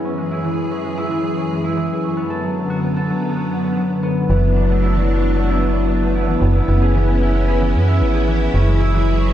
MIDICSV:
0, 0, Header, 1, 4, 480
1, 0, Start_track
1, 0, Key_signature, 3, "minor"
1, 0, Tempo, 530973
1, 42, Time_signature, 4, 2, 24, 8
1, 8435, End_track
2, 0, Start_track
2, 0, Title_t, "Harp"
2, 0, Program_c, 0, 46
2, 0, Note_on_c, 0, 59, 76
2, 0, Note_on_c, 0, 62, 74
2, 0, Note_on_c, 0, 64, 69
2, 0, Note_on_c, 0, 68, 89
2, 43, Note_on_c, 0, 61, 72
2, 97, Note_off_c, 0, 62, 0
2, 163, Note_on_c, 0, 56, 71
2, 278, Note_off_c, 0, 64, 0
2, 282, Note_on_c, 0, 64, 96
2, 402, Note_on_c, 0, 52, 75
2, 638, Note_off_c, 0, 61, 0
2, 641, Note_on_c, 0, 61, 74
2, 751, Note_off_c, 0, 56, 0
2, 761, Note_on_c, 0, 56, 72
2, 878, Note_off_c, 0, 64, 0
2, 882, Note_on_c, 0, 64, 99
2, 992, Note_off_c, 0, 52, 0
2, 1003, Note_on_c, 0, 52, 73
2, 1239, Note_off_c, 0, 61, 0
2, 1243, Note_on_c, 0, 61, 73
2, 1352, Note_off_c, 0, 56, 0
2, 1362, Note_on_c, 0, 56, 68
2, 1478, Note_off_c, 0, 64, 0
2, 1482, Note_on_c, 0, 64, 98
2, 1591, Note_off_c, 0, 52, 0
2, 1602, Note_on_c, 0, 52, 71
2, 1738, Note_off_c, 0, 68, 0
2, 1837, Note_off_c, 0, 61, 0
2, 1841, Note_on_c, 0, 61, 71
2, 1956, Note_off_c, 0, 59, 0
2, 1960, Note_on_c, 0, 59, 75
2, 2007, Note_off_c, 0, 52, 0
2, 2007, Note_off_c, 0, 56, 0
2, 2079, Note_on_c, 0, 69, 94
2, 2200, Note_on_c, 0, 54, 73
2, 2439, Note_on_c, 0, 66, 75
2, 2557, Note_off_c, 0, 59, 0
2, 2561, Note_on_c, 0, 59, 73
2, 2677, Note_off_c, 0, 69, 0
2, 2681, Note_on_c, 0, 69, 97
2, 2790, Note_off_c, 0, 54, 0
2, 2800, Note_on_c, 0, 54, 72
2, 3037, Note_off_c, 0, 66, 0
2, 3041, Note_on_c, 0, 66, 74
2, 3278, Note_off_c, 0, 59, 0
2, 3281, Note_on_c, 0, 59, 70
2, 3390, Note_off_c, 0, 54, 0
2, 3401, Note_on_c, 0, 54, 77
2, 3639, Note_off_c, 0, 59, 0
2, 3642, Note_on_c, 0, 59, 92
2, 3843, Note_off_c, 0, 64, 0
2, 3882, Note_on_c, 0, 52, 82
2, 3927, Note_off_c, 0, 54, 0
2, 4123, Note_on_c, 0, 62, 77
2, 4177, Note_off_c, 0, 61, 0
2, 4243, Note_on_c, 0, 57, 76
2, 4361, Note_on_c, 0, 64, 100
2, 4472, Note_off_c, 0, 52, 0
2, 4483, Note_on_c, 0, 52, 76
2, 4666, Note_off_c, 0, 69, 0
2, 4718, Note_off_c, 0, 62, 0
2, 4722, Note_on_c, 0, 62, 78
2, 4838, Note_off_c, 0, 57, 0
2, 4842, Note_on_c, 0, 57, 82
2, 4958, Note_off_c, 0, 64, 0
2, 4962, Note_on_c, 0, 64, 107
2, 5073, Note_off_c, 0, 52, 0
2, 5083, Note_on_c, 0, 52, 78
2, 5244, Note_off_c, 0, 66, 0
2, 5319, Note_off_c, 0, 62, 0
2, 5323, Note_on_c, 0, 62, 83
2, 5440, Note_off_c, 0, 57, 0
2, 5443, Note_on_c, 0, 57, 75
2, 5559, Note_off_c, 0, 64, 0
2, 5562, Note_on_c, 0, 64, 97
2, 5671, Note_off_c, 0, 52, 0
2, 5682, Note_on_c, 0, 52, 76
2, 5847, Note_off_c, 0, 52, 0
2, 5919, Note_off_c, 0, 64, 0
2, 5923, Note_on_c, 0, 64, 76
2, 6040, Note_off_c, 0, 59, 0
2, 6043, Note_on_c, 0, 59, 75
2, 6164, Note_on_c, 0, 68, 103
2, 6218, Note_off_c, 0, 57, 0
2, 6283, Note_on_c, 0, 52, 85
2, 6519, Note_off_c, 0, 64, 0
2, 6523, Note_on_c, 0, 64, 79
2, 6640, Note_off_c, 0, 59, 0
2, 6644, Note_on_c, 0, 59, 77
2, 6759, Note_off_c, 0, 68, 0
2, 6763, Note_on_c, 0, 68, 103
2, 6872, Note_off_c, 0, 52, 0
2, 6883, Note_on_c, 0, 52, 78
2, 7119, Note_off_c, 0, 64, 0
2, 7123, Note_on_c, 0, 64, 77
2, 7238, Note_off_c, 0, 59, 0
2, 7242, Note_on_c, 0, 59, 82
2, 7359, Note_off_c, 0, 68, 0
2, 7363, Note_on_c, 0, 68, 104
2, 7471, Note_off_c, 0, 52, 0
2, 7482, Note_on_c, 0, 52, 76
2, 7722, Note_on_c, 0, 61, 84
2, 7767, Note_off_c, 0, 52, 0
2, 7776, Note_off_c, 0, 62, 0
2, 7842, Note_on_c, 0, 56, 74
2, 7959, Note_off_c, 0, 64, 0
2, 7962, Note_on_c, 0, 64, 104
2, 8082, Note_on_c, 0, 52, 76
2, 8318, Note_off_c, 0, 61, 0
2, 8322, Note_on_c, 0, 61, 79
2, 8430, Note_off_c, 0, 56, 0
2, 8435, Note_off_c, 0, 52, 0
2, 8435, Note_off_c, 0, 59, 0
2, 8435, Note_off_c, 0, 61, 0
2, 8435, Note_off_c, 0, 64, 0
2, 8435, Note_off_c, 0, 68, 0
2, 8435, End_track
3, 0, Start_track
3, 0, Title_t, "String machine"
3, 0, Program_c, 1, 50
3, 0, Note_on_c, 1, 42, 76
3, 41, Note_on_c, 1, 52, 72
3, 41, Note_on_c, 1, 68, 86
3, 1942, Note_off_c, 1, 52, 0
3, 1942, Note_off_c, 1, 68, 0
3, 1962, Note_on_c, 1, 50, 73
3, 1962, Note_on_c, 1, 59, 89
3, 3846, Note_off_c, 1, 42, 0
3, 3863, Note_off_c, 1, 50, 0
3, 3863, Note_off_c, 1, 59, 0
3, 3882, Note_on_c, 1, 59, 75
3, 3882, Note_on_c, 1, 62, 91
3, 3883, Note_on_c, 1, 54, 82
3, 5783, Note_off_c, 1, 54, 0
3, 5783, Note_off_c, 1, 62, 0
3, 5802, Note_on_c, 1, 61, 78
3, 5802, Note_on_c, 1, 64, 91
3, 7686, Note_off_c, 1, 59, 0
3, 7702, Note_off_c, 1, 61, 0
3, 7722, Note_on_c, 1, 54, 85
3, 7722, Note_on_c, 1, 68, 77
3, 8435, Note_off_c, 1, 54, 0
3, 8435, Note_off_c, 1, 64, 0
3, 8435, Note_off_c, 1, 68, 0
3, 8435, End_track
4, 0, Start_track
4, 0, Title_t, "FM bass"
4, 0, Program_c, 2, 39
4, 3882, Note_on_c, 2, 30, 98
4, 5748, Note_off_c, 2, 30, 0
4, 5802, Note_on_c, 2, 30, 102
4, 5974, Note_off_c, 2, 30, 0
4, 6042, Note_on_c, 2, 30, 103
4, 7002, Note_on_c, 2, 42, 78
4, 7015, Note_off_c, 2, 30, 0
4, 7241, Note_on_c, 2, 32, 97
4, 7254, Note_off_c, 2, 42, 0
4, 7667, Note_off_c, 2, 32, 0
4, 7721, Note_on_c, 2, 30, 98
4, 8435, Note_off_c, 2, 30, 0
4, 8435, End_track
0, 0, End_of_file